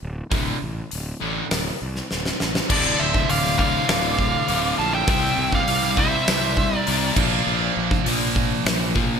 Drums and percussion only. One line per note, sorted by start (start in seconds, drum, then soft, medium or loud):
0.31 kick loud
0.31 open hi-hat medium
0.91 open hi-hat medium
1.51 snare medium
1.51 open hi-hat medium
1.96 snare soft
2.11 snare medium
2.25 snare medium
2.40 snare medium
2.55 snare medium
2.70 kick loud
2.70 crash loud
3.14 kick medium
3.29 open hi-hat medium
3.45 snare soft
3.59 kick medium
3.89 snare loud
3.89 open hi-hat soft
4.19 kick medium
4.48 open hi-hat medium
5.08 kick loud
5.08 open hi-hat medium
5.53 kick medium
5.68 open hi-hat medium
5.83 snare soft
5.97 kick medium
6.28 snare loud
6.28 open hi-hat medium
6.57 kick medium
6.87 open hi-hat medium
7.16 kick medium
7.16 crash medium
7.91 kick medium
8.06 open hi-hat medium
8.36 kick medium
8.66 snare loud
8.66 open hi-hat medium
8.96 kick medium